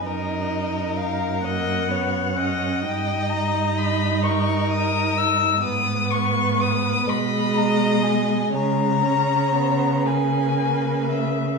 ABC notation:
X:1
M:6/8
L:1/8
Q:3/8=42
K:Ebm
V:1 name="Violin"
e2 f g3 | [K:G#m] =g a b c' d' e' | d' c' d' b a g | a3 g2 e |]
V:2 name="Violin"
B3 e d e- | [K:G#m] _e3 A3 | B3 d3 | c3 B3 |]
V:3 name="Viola"
E3 B, C D | [K:G#m] D6 | B,3 G,3 | G, C B, A,3 |]
V:4 name="Cello" clef=bass
G,,6 | [K:G#m] =G,,6 | G,,3 B,,3 | C,6 |]